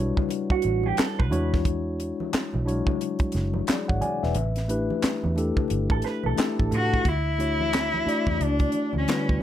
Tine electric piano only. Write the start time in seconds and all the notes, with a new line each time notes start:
Already playing: G3 D4 E4 F#4 B4 C#5 F#5
1.30 G#3 D4 E4 F#4 C#5
2.65 F#3 D4 E4 F#4 C#5
2.72 G#3
3.68 G#4 D5
3.88 C#5 F#5
4.01 D5 G#5
4.23 B4 E5
4.68 A3 D4 E4 G4 B4
5.36 A3 D4 E4 G4 A4
6.37 A3 D4 E4 G4 A4
7.38 A3 D4 E4 F#4 C#5
8.06 A3 D4 E4 F#4 D5
9.07 D3 G3 E4 F#4 B4